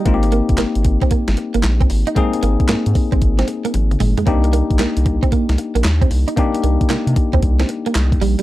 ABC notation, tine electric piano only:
X:1
M:4/4
L:1/8
Q:"Swing 16ths" 1/4=114
K:Cm
V:1 name="Tine electric piano"
[B,CEFG]8 | [B,CEA]8 | [B,DEG]8 | [B,DEG]8 |]